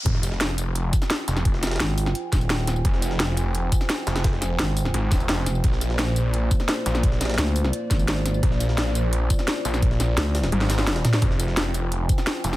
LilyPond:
<<
  \new Staff \with { instrumentName = "Analog synth pad" } { \time 4/4 \key f \dorian \tempo 4 = 172 <f' c'' g'' aes''>1~ | <f' c'' g'' aes''>1~ | <f' c'' g'' aes''>1~ | <f' c'' g'' aes''>1 |
<bes f' d''>1~ | <bes f' d''>1~ | <bes f' d''>1~ | <bes f' d''>1 |
<c'' g'' aes''>1 | }
  \new Staff \with { instrumentName = "FM bass" } { \clef bass \time 4/4 \key f \dorian r1 | r4 aes,,4 r8 ees,,4. | r1 | r4 aes,,4 r4. f,,8 |
r1 | r4 d,4 r8 aes,,4. | r1 | r4 d,4 r2 |
r1 | }
  \new Staff \with { instrumentName = "Detuned saw bass" } { \clef bass \time 4/4 \key f \dorian f,,2~ f,,8 r4 f,,8~ | f,,4 r2. | f,,2~ f,,8 r4 f,,8~ | f,,4 r4 aes,,8 ees,,8 f,,8 r8 |
bes,,2~ bes,,8 r4 bes,,8~ | bes,,4 r2. | bes,,2~ bes,,8 r4 bes,,8~ | bes,,4 r4 aes,,4. r8 |
f,,2~ f,,8 r4 f,,8 | }
  \new DrumStaff \with { instrumentName = "Drums" } \drummode { \time 4/4 <hh bd>16 sn16 <hh sn tamb>16 sn16 <hh sn>8 <hh tamb>8 hh8 <hh bd tamb>16 <sn tamb>16 <hh sn>8 <hh sn tamb>16 <hh sn tamb>16 | <hh bd>16 sn16 <hh sn tamb>32 <hh sn>32 <hh sn>32 <hh sn>32 <hh sn>16 hh16 <hh hho tamb>16 sn16 hh8 <hh bd sn tamb>16 <hh tamb>16 <hh sn>16 sn16 <hh sn tamb>16 tamb16 | <hh bd>16 sn16 <hh sn tamb>16 sn16 <hh sn>8 <hh tamb>8 hh8 <hh bd tamb>16 <sn tamb>16 <hh sn>8 <hh sn tamb>16 <hh sn tamb>16 | <hh bd sn>16 sn16 <hh sn tamb>8 <hh sn>16 hh16 <hh hho tamb>16 sn16 hh8 <hh bd sn tamb>16 <hh tamb>16 <hh sn>16 sn16 <hh sn tamb>16 tamb16 |
<hh bd>16 sn16 <hh sn tamb>16 sn16 <hh sn>8 <hh tamb>8 hh8 <hh bd tamb>16 <sn tamb>16 <hh sn>8 <hh sn tamb>16 <hh sn tamb>16 | <hh bd>16 sn16 <hh sn tamb>32 <hh sn>32 <hh sn>32 <hh sn>32 <hh sn>16 hh16 <hh hho tamb>16 sn16 hh8 <hh bd sn tamb>16 <hh tamb>16 <hh sn>16 sn16 <hh sn tamb>16 tamb16 | <hh bd>16 sn16 <hh sn tamb>16 sn16 <hh sn>8 <hh tamb>8 hh8 <hh bd tamb>16 <sn tamb>16 <hh sn>8 <hh sn tamb>16 <hh sn tamb>16 | <hh bd>16 sn16 <hh sn tamb>8 <hh sn>16 hh16 <hh hho sn tamb>16 <hh sn>16 <hh tommh>16 sn16 <hh sn tamb>16 <hh sn tamb>16 <hh sn>16 <hh sn>16 <hh sn tamb toml>16 <hh sn tamb>16 |
<hh bd>16 sn16 <hh sn tamb>16 sn16 <hh sn>8 <hh tamb>8 hh8 <hh bd tamb>16 <sn tamb>16 <hh sn>8 <hh sn tamb>16 <hh sn tamb>16 | }
>>